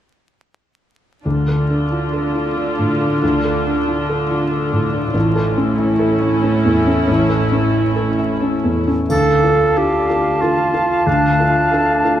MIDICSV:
0, 0, Header, 1, 9, 480
1, 0, Start_track
1, 0, Key_signature, -1, "minor"
1, 0, Tempo, 659341
1, 911, Time_signature, 3, 2, 24, 8
1, 2819, Tempo, 644468
1, 5699, Tempo, 674157
1, 7139, Tempo, 652884
1, 8932, End_track
2, 0, Start_track
2, 0, Title_t, "Flute"
2, 0, Program_c, 0, 73
2, 6671, Note_on_c, 0, 81, 44
2, 8932, Note_off_c, 0, 81, 0
2, 8932, End_track
3, 0, Start_track
3, 0, Title_t, "Oboe"
3, 0, Program_c, 1, 68
3, 6666, Note_on_c, 1, 77, 42
3, 8932, Note_off_c, 1, 77, 0
3, 8932, End_track
4, 0, Start_track
4, 0, Title_t, "Clarinet"
4, 0, Program_c, 2, 71
4, 6671, Note_on_c, 2, 69, 62
4, 7148, Note_on_c, 2, 67, 57
4, 7159, Note_off_c, 2, 69, 0
4, 7619, Note_on_c, 2, 65, 56
4, 7630, Note_off_c, 2, 67, 0
4, 8099, Note_on_c, 2, 62, 54
4, 8110, Note_off_c, 2, 65, 0
4, 8932, Note_off_c, 2, 62, 0
4, 8932, End_track
5, 0, Start_track
5, 0, Title_t, "Harp"
5, 0, Program_c, 3, 46
5, 913, Note_on_c, 3, 50, 35
5, 1078, Note_on_c, 3, 62, 26
5, 1238, Note_on_c, 3, 69, 28
5, 1383, Note_off_c, 3, 62, 0
5, 1391, Note_on_c, 3, 62, 30
5, 1543, Note_off_c, 3, 69, 0
5, 1552, Note_on_c, 3, 69, 30
5, 1700, Note_off_c, 3, 62, 0
5, 1708, Note_on_c, 3, 62, 27
5, 1860, Note_off_c, 3, 69, 0
5, 1869, Note_on_c, 3, 69, 29
5, 2015, Note_off_c, 3, 62, 0
5, 2023, Note_on_c, 3, 62, 29
5, 2177, Note_off_c, 3, 69, 0
5, 2186, Note_on_c, 3, 69, 26
5, 2336, Note_off_c, 3, 50, 0
5, 2345, Note_on_c, 3, 50, 37
5, 2500, Note_off_c, 3, 62, 0
5, 2509, Note_on_c, 3, 62, 30
5, 2660, Note_off_c, 3, 69, 0
5, 2669, Note_on_c, 3, 69, 31
5, 2813, Note_off_c, 3, 62, 0
5, 2822, Note_on_c, 3, 62, 33
5, 2976, Note_off_c, 3, 69, 0
5, 2985, Note_on_c, 3, 69, 35
5, 3132, Note_off_c, 3, 62, 0
5, 3141, Note_on_c, 3, 62, 30
5, 3287, Note_off_c, 3, 69, 0
5, 3296, Note_on_c, 3, 69, 37
5, 3449, Note_off_c, 3, 62, 0
5, 3458, Note_on_c, 3, 62, 32
5, 3602, Note_off_c, 3, 69, 0
5, 3611, Note_on_c, 3, 69, 34
5, 3766, Note_on_c, 3, 45, 45
5, 3787, Note_off_c, 3, 50, 0
5, 3790, Note_off_c, 3, 62, 0
5, 3929, Note_on_c, 3, 61, 31
5, 4077, Note_off_c, 3, 69, 0
5, 4086, Note_on_c, 3, 69, 39
5, 4234, Note_off_c, 3, 61, 0
5, 4243, Note_on_c, 3, 61, 38
5, 4396, Note_off_c, 3, 69, 0
5, 4405, Note_on_c, 3, 69, 40
5, 4554, Note_off_c, 3, 61, 0
5, 4563, Note_on_c, 3, 61, 39
5, 4716, Note_off_c, 3, 69, 0
5, 4725, Note_on_c, 3, 69, 39
5, 4879, Note_off_c, 3, 61, 0
5, 4888, Note_on_c, 3, 61, 32
5, 5038, Note_off_c, 3, 69, 0
5, 5047, Note_on_c, 3, 69, 39
5, 5196, Note_off_c, 3, 45, 0
5, 5205, Note_on_c, 3, 45, 54
5, 5363, Note_off_c, 3, 61, 0
5, 5372, Note_on_c, 3, 61, 38
5, 5528, Note_off_c, 3, 69, 0
5, 5537, Note_on_c, 3, 69, 38
5, 5697, Note_off_c, 3, 61, 0
5, 5706, Note_on_c, 3, 61, 42
5, 5848, Note_off_c, 3, 69, 0
5, 5857, Note_on_c, 3, 69, 39
5, 6007, Note_off_c, 3, 61, 0
5, 6016, Note_on_c, 3, 61, 37
5, 6164, Note_off_c, 3, 69, 0
5, 6173, Note_on_c, 3, 69, 38
5, 6328, Note_off_c, 3, 61, 0
5, 6337, Note_on_c, 3, 61, 30
5, 6499, Note_off_c, 3, 69, 0
5, 6507, Note_on_c, 3, 69, 31
5, 6668, Note_on_c, 3, 50, 44
5, 6681, Note_off_c, 3, 45, 0
5, 6683, Note_off_c, 3, 61, 0
5, 6827, Note_on_c, 3, 62, 31
5, 6984, Note_on_c, 3, 65, 31
5, 7135, Note_off_c, 3, 69, 0
5, 7144, Note_on_c, 3, 69, 37
5, 7306, Note_on_c, 3, 74, 33
5, 7457, Note_on_c, 3, 77, 34
5, 7604, Note_off_c, 3, 74, 0
5, 7613, Note_on_c, 3, 74, 37
5, 7761, Note_off_c, 3, 65, 0
5, 7770, Note_on_c, 3, 65, 31
5, 7921, Note_off_c, 3, 62, 0
5, 7930, Note_on_c, 3, 62, 31
5, 8080, Note_off_c, 3, 50, 0
5, 8089, Note_on_c, 3, 50, 44
5, 8250, Note_on_c, 3, 57, 35
5, 8405, Note_off_c, 3, 65, 0
5, 8414, Note_on_c, 3, 65, 35
5, 8563, Note_off_c, 3, 69, 0
5, 8572, Note_on_c, 3, 69, 38
5, 8730, Note_off_c, 3, 74, 0
5, 8739, Note_on_c, 3, 74, 37
5, 8888, Note_off_c, 3, 77, 0
5, 8897, Note_on_c, 3, 77, 36
5, 8932, Note_off_c, 3, 50, 0
5, 8932, Note_off_c, 3, 57, 0
5, 8932, Note_off_c, 3, 62, 0
5, 8932, Note_off_c, 3, 65, 0
5, 8932, Note_off_c, 3, 69, 0
5, 8932, Note_off_c, 3, 74, 0
5, 8932, Note_off_c, 3, 77, 0
5, 8932, End_track
6, 0, Start_track
6, 0, Title_t, "Felt piano"
6, 0, Program_c, 4, 0
6, 912, Note_on_c, 4, 38, 30
6, 1051, Control_c, 4, 64, 127
6, 1080, Note_on_c, 4, 69, 28
6, 1236, Note_on_c, 4, 62, 25
6, 1331, Note_off_c, 4, 69, 0
6, 1396, Note_on_c, 4, 65, 28
6, 1487, Note_off_c, 4, 62, 0
6, 1553, Note_on_c, 4, 69, 26
6, 1645, Note_off_c, 4, 65, 0
6, 1713, Note_on_c, 4, 65, 27
6, 1803, Note_off_c, 4, 69, 0
6, 1867, Note_on_c, 4, 62, 25
6, 1963, Note_off_c, 4, 65, 0
6, 2029, Note_on_c, 4, 45, 29
6, 2121, Note_off_c, 4, 62, 0
6, 2189, Note_on_c, 4, 62, 29
6, 2282, Note_off_c, 4, 45, 0
6, 2315, Note_off_c, 4, 38, 0
6, 2353, Note_on_c, 4, 38, 39
6, 2358, Control_c, 4, 64, 0
6, 2443, Note_off_c, 4, 62, 0
6, 2463, Control_c, 4, 64, 127
6, 2510, Note_on_c, 4, 69, 32
6, 2671, Note_on_c, 4, 62, 26
6, 2760, Note_off_c, 4, 69, 0
6, 2827, Note_on_c, 4, 65, 27
6, 2920, Note_off_c, 4, 62, 0
6, 2985, Note_on_c, 4, 69, 32
6, 3077, Note_off_c, 4, 65, 0
6, 3143, Note_on_c, 4, 65, 32
6, 3233, Note_off_c, 4, 69, 0
6, 3291, Note_on_c, 4, 62, 29
6, 3391, Note_off_c, 4, 65, 0
6, 3452, Note_on_c, 4, 45, 32
6, 3545, Note_off_c, 4, 62, 0
6, 3603, Note_on_c, 4, 62, 33
6, 3704, Note_off_c, 4, 45, 0
6, 3742, Note_off_c, 4, 38, 0
6, 3762, Note_on_c, 4, 33, 42
6, 3764, Note_off_c, 4, 62, 0
6, 3782, Control_c, 4, 64, 0
6, 3920, Control_c, 4, 64, 127
6, 3923, Note_on_c, 4, 69, 36
6, 4086, Note_on_c, 4, 61, 34
6, 4180, Note_off_c, 4, 69, 0
6, 4239, Note_on_c, 4, 64, 36
6, 4342, Note_off_c, 4, 61, 0
6, 4399, Note_on_c, 4, 69, 36
6, 4500, Note_off_c, 4, 64, 0
6, 4557, Note_on_c, 4, 64, 37
6, 4661, Note_off_c, 4, 69, 0
6, 4721, Note_on_c, 4, 61, 38
6, 4821, Note_off_c, 4, 64, 0
6, 4886, Note_on_c, 4, 40, 39
6, 4983, Note_off_c, 4, 61, 0
6, 5049, Note_on_c, 4, 61, 42
6, 5147, Note_off_c, 4, 40, 0
6, 5181, Note_off_c, 4, 33, 0
6, 5206, Note_on_c, 4, 33, 46
6, 5228, Control_c, 4, 64, 0
6, 5309, Note_off_c, 4, 61, 0
6, 5348, Control_c, 4, 64, 127
6, 5368, Note_on_c, 4, 69, 37
6, 5533, Note_on_c, 4, 61, 37
6, 5631, Note_off_c, 4, 69, 0
6, 5699, Note_on_c, 4, 64, 34
6, 5793, Note_off_c, 4, 61, 0
6, 5856, Note_on_c, 4, 69, 35
6, 5953, Note_off_c, 4, 64, 0
6, 6018, Note_on_c, 4, 64, 38
6, 6113, Note_off_c, 4, 69, 0
6, 6181, Note_on_c, 4, 61, 32
6, 6276, Note_off_c, 4, 64, 0
6, 6341, Note_on_c, 4, 40, 33
6, 6442, Note_off_c, 4, 61, 0
6, 6507, Note_on_c, 4, 61, 29
6, 6603, Note_off_c, 4, 40, 0
6, 6634, Note_off_c, 4, 33, 0
6, 6667, Note_off_c, 4, 61, 0
6, 6667, Note_on_c, 4, 38, 35
6, 6679, Control_c, 4, 64, 0
6, 6799, Control_c, 4, 64, 127
6, 6896, Note_off_c, 4, 38, 0
6, 6904, Note_on_c, 4, 65, 28
6, 6907, Note_on_c, 4, 69, 30
6, 7116, Note_off_c, 4, 65, 0
6, 7117, Note_off_c, 4, 69, 0
6, 7142, Note_on_c, 4, 62, 31
6, 7146, Note_on_c, 4, 65, 29
6, 7148, Note_on_c, 4, 69, 29
6, 7357, Note_off_c, 4, 62, 0
6, 7359, Note_off_c, 4, 65, 0
6, 7360, Note_off_c, 4, 69, 0
6, 7383, Note_on_c, 4, 65, 30
6, 7386, Note_on_c, 4, 69, 33
6, 7595, Note_off_c, 4, 65, 0
6, 7597, Note_off_c, 4, 69, 0
6, 7626, Note_on_c, 4, 62, 31
6, 7626, Note_on_c, 4, 65, 26
6, 7630, Note_on_c, 4, 69, 28
6, 7836, Note_off_c, 4, 62, 0
6, 7836, Note_off_c, 4, 65, 0
6, 7839, Note_off_c, 4, 69, 0
6, 7856, Note_on_c, 4, 65, 31
6, 7858, Note_on_c, 4, 69, 34
6, 8072, Note_off_c, 4, 65, 0
6, 8073, Note_off_c, 4, 69, 0
6, 8098, Note_on_c, 4, 38, 41
6, 8109, Control_c, 4, 64, 0
6, 8222, Control_c, 4, 64, 127
6, 8329, Note_off_c, 4, 38, 0
6, 8341, Note_on_c, 4, 65, 28
6, 8344, Note_on_c, 4, 69, 32
6, 8555, Note_off_c, 4, 65, 0
6, 8557, Note_off_c, 4, 69, 0
6, 8582, Note_on_c, 4, 62, 32
6, 8587, Note_on_c, 4, 65, 29
6, 8588, Note_on_c, 4, 69, 32
6, 8798, Note_off_c, 4, 62, 0
6, 8800, Note_off_c, 4, 65, 0
6, 8801, Note_off_c, 4, 69, 0
6, 8818, Note_on_c, 4, 65, 31
6, 8821, Note_on_c, 4, 69, 34
6, 8932, Note_off_c, 4, 65, 0
6, 8932, Note_off_c, 4, 69, 0
6, 8932, End_track
7, 0, Start_track
7, 0, Title_t, "Viola section"
7, 0, Program_c, 5, 48
7, 908, Note_on_c, 5, 62, 37
7, 909, Note_on_c, 5, 65, 32
7, 4214, Note_off_c, 5, 62, 0
7, 4215, Note_off_c, 5, 65, 0
7, 4247, Note_on_c, 5, 64, 47
7, 4248, Note_on_c, 5, 61, 44
7, 6522, Note_off_c, 5, 61, 0
7, 6522, Note_off_c, 5, 64, 0
7, 8932, End_track
8, 0, Start_track
8, 0, Title_t, "Cello section"
8, 0, Program_c, 6, 48
8, 916, Note_on_c, 6, 50, 40
8, 3740, Note_off_c, 6, 50, 0
8, 3768, Note_on_c, 6, 45, 49
8, 6521, Note_off_c, 6, 45, 0
8, 8932, End_track
9, 0, Start_track
9, 0, Title_t, "Drums"
9, 6668, Note_on_c, 9, 81, 28
9, 6739, Note_off_c, 9, 81, 0
9, 8932, End_track
0, 0, End_of_file